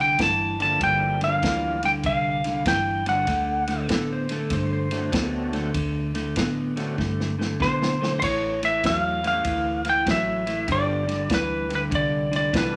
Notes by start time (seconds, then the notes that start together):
Already playing: C2 G2
0.00 D3 G5
0.18 G1 G2 E3 A5, kick, snare, ride
0.59 G2 D3 F3 G3 A#3 D4 E4 A5, snare, ride
0.80 G1 G2 D3 G5, kick, ride
1.21 G2 D3 F5, snare, ride
1.42 D2 G2 E3 F3 G3 A#3 D4 F4, kick, snare, ride
1.83 G2 D3 G5, snare, ride
2.03 C2 G2 D3 F5, kick, ride
2.44 G2 D3, snare, ride
2.65 G1 G2 E3 G5, kick, snare, ride
3.06 G2 D3 F#3 A3 C4 D4 F#4 F#5, snare, ride
3.27 D2 D3 A3, kick, snare, ride
3.67 D3 A3, snare, ride
3.89 A2 D3 B3 A4, kick, snare, ride
4.12 C5
4.29 D3 A3 A4, snare, ride
4.50 G2 D3 A3 C5, kick, snare, ride
4.73 C5
4.91 D3 F#3 A3 C4 D4 F#4, snare, ride
5.12 D2 D3 B3, kick, snare, ride
5.53 D3 A3, snare, ride
5.74 D2 D3 A3, kick, ride
6.14 D3 A3, snare, ride
6.36 A2 D3 B3, kick, snare, ride
6.76 D3 F#3 A3 C4 D4 F#4, snare, ride
6.98 G2 D3 A3, kick, snare
7.20 snare
7.39 D3 A3, snare
7.60 B1 D3 B3 C5, kick, snare
7.82 snare
8.01 D3 A3, snare
8.20 A1 A2 E3 C5, kick, crash, ride
8.24 C#5
8.62 A2 E3 E5, snare, ride
8.83 E2 A2 F#3 E5, kick, snare, ride
8.97 F5
9.24 A2 E3 G3 A3 C#4 E4 G4 F5, snare, ride
9.44 D2 A2 E3, kick, ride
9.85 A2 E3, snare, ride
9.89 G5
10.06 A1 A2 F#3, kick, snare, ride
10.11 E5
10.46 A2 E3, snare, ride
10.67 G1 G2 D3 G3 B3 D4 F4 G4, kick, ride
10.72 D5
11.08 G2 D3, snare, ride
11.30 D2 G2 E3, kick, snare, ride
11.34 B4
11.69 G2 D3, snare, ride
11.75 B4
11.90 C2 G2 D3, kick, ride
11.95 D5
12.31 G2 D3, snare, ride
12.36 D5
12.52 C2 G2 E3 G3 B3 D4 F4 A4, kick, snare, ride
12.57 B4